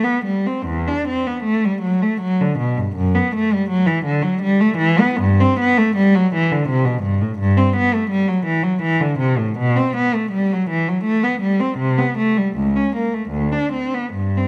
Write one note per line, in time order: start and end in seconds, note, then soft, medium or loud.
0.04 0.26 B3 medium
0.25 0.46 G3 medium
0.47 0.68 C4 medium
0.66 0.87 E2 medium
0.88 1.08 D4 medium
1.08 1.27 C4 medium
1.27 1.46 B3 medium
1.44 1.63 A3 medium
1.65 1.84 G3 medium
1.82 2.01 F#3 medium
2.02 2.21 A3 medium
2.21 2.39 F#3 medium
2.41 2.59 D3 medium
2.58 2.77 B2 medium
2.77 2.96 G2 medium
2.95 3.14 F#2 medium
3.15 3.33 B3 medium
3.35 3.52 A3 medium
3.53 3.71 G3 medium
3.70 3.88 F#3 medium
3.86 4.06 E3 medium
4.05 4.24 D3 medium
4.22 4.42 F#3 medium
4.42 4.61 G3 medium
4.60 4.80 A3 medium
4.78 4.98 E3 medium
4.99 5.19 B3 medium
5.21 5.40 G2 medium
5.40 5.59 C4 medium
5.60 5.78 B3 medium
5.78 5.96 A3 medium
5.96 6.14 G3 medium
6.15 6.33 F#3 medium
6.35 6.51 E3 medium
6.52 6.69 D3 medium
6.68 6.86 C3 medium
6.85 7.03 B2 medium
7.03 7.21 G2 medium
7.21 7.40 A2 medium
7.39 7.57 G2 medium
7.57 7.76 C4 medium
7.76 7.94 B3 medium
7.94 8.12 A3 medium
8.10 8.29 G3 medium
8.28 8.47 F#3 medium
8.46 8.65 E3 medium
8.63 8.82 F#3 medium
8.82 9.01 E3 medium
9.00 9.20 D3 medium
9.19 9.39 C3 medium
9.38 9.59 A2 medium
9.58 9.78 B2 medium
9.76 9.97 C4 medium
9.96 10.15 B3 medium
10.15 10.34 A3 medium
10.31 10.51 G3 medium
10.52 10.71 F#3 medium
10.70 10.89 E3 medium
10.88 11.07 F#3 medium
11.04 11.24 A3 medium
11.24 11.43 B3 medium
11.41 11.61 G3 medium
11.60 11.80 C4 medium
11.78 11.98 C3 medium
11.98 12.17 B3 medium
12.18 12.37 A3 medium
12.37 12.56 G3 medium
12.56 12.75 C#2 medium
12.76 12.95 C#4 medium
12.96 13.14 A#3 soft
13.14 13.33 A3 soft
13.30 13.51 D2 medium
13.53 13.73 D4 medium
13.73 13.93 C4 soft
13.93 14.15 B3 soft
14.13 14.36 G2 medium
14.38 14.48 C4 soft